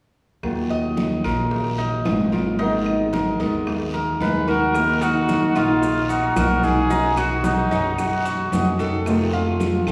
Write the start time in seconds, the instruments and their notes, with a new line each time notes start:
0.43 upright bass D#2, nylon-string guitar D#3 F#3 A#3 F4, high bongo, high conga, long guiro, claves
0.70 cuban tres D#5, high bongo, high conga
0.97 high bongo, high conga, short guiro
1.24 upright bass A#1, nylon-string guitar F#3 A#3 F4, cuban tres A#4, high conga, short guiro, claves
1.51 high bongo, high conga, long guiro
1.78 cuban tres D#4, high bongo, high conga
2.05 upright bass G#1, nylon-string guitar D#3 F#3 A#3 F4, high bongo, low bongo, high conga, short guiro, claves
2.32 nylon-string guitar F#3 A#3 F4, cuban tres A#4, high bongo, high conga, short guiro
2.59 nylon-string guitar D#3 G#3 B3 D#4 A#4, cuban tres D#4, high bongo, high conga, long guiro
2.86 high bongo, high conga, claves
3.13 cuban tres A#4, high bongo, high conga, short guiro
3.40 upright bass D#2, nylon-string guitar G#3 B3 D#4 A#4, cuban tres D#5, high conga, short guiro
3.67 high bongo, high conga, long guiro, claves
3.94 cuban tres A#4, high bongo, high conga
4.21 upright bass D#2, nylon-string guitar G#3 B3 D#4 A#4, trumpet B4, high bongo, low bongo, high conga, short guiro
4.47 nylon-string guitar G#3 B3 D#4 A#4, cuban tres F#4, trumpet A#4, high bongo, high conga, short guiro
4.74 nylon-string guitar D#3 A#3 D#4 F#4, high bongo, high conga, long guiro, claves, maracas
5.01 nylon-string guitar A#3 D#4 F#4, cuban tres D#4, trumpet F#4, high bongo, high conga, maracas
5.28 high bongo, high conga, short guiro, maracas
5.55 upright bass A#1, nylon-string guitar A#3 D#4 F#4, cuban tres D#4, trumpet F4, high conga, short guiro, claves, maracas
5.82 muted nylon-string guitar stroke, high bongo, high conga, long guiro, maracas
6.09 cuban tres D#4, trumpet F#4, high bongo, high conga, maracas
6.36 upright bass B1, nylon-string guitar D#3 A#3 D#4 F#4, cuban tres F#4, trumpet A#4, high bongo, low bongo, high conga, short guiro, claves, maracas
6.63 nylon-string guitar A#3 D#4 F#4, trumpet G#4, high bongo, high conga, short guiro, maracas
6.90 nylon-string guitar B2 D#3 C#4 F#4, cuban tres D#4, high bongo, high conga, long guiro, maracas
7.17 nylon-string guitar D#3 C#4 F#4, cuban tres F#4, trumpet F#4, high bongo, high conga, claves, maracas
7.44 trumpet D#4, high bongo, high conga, short guiro, maracas
7.71 upright bass F#2, nylon-string guitar D#3 C#4 F#4, cuban tres D#4, high conga, short guiro, maracas
7.98 trumpet F#4, muted nylon-string guitar stroke, high bongo, high conga, long guiro, claves, maracas
8.25 cuban tres F#4, high bongo, high conga, maracas
8.52 upright bass F2, nylon-string guitar B2 D#3 C#4 F#4, cuban tres D#5, high bongo, low bongo, high conga, short guiro, maracas
8.79 nylon-string guitar D#3 C#4 F#4, cuban tres A4, high bongo, high conga, short guiro, maracas
9.06 nylon-string guitar C3 D#3 A3 C4 F4, high bongo, high conga, long guiro, claves, maracas
9.33 nylon-string guitar A3 C4 F4, cuban tres F4, high bongo, high conga
9.60 high bongo, high conga, short guiro, maracas
9.87 upright bass C2, nylon-string guitar A3 C4 F4, cuban tres A4, high conga, short guiro, claves, maracas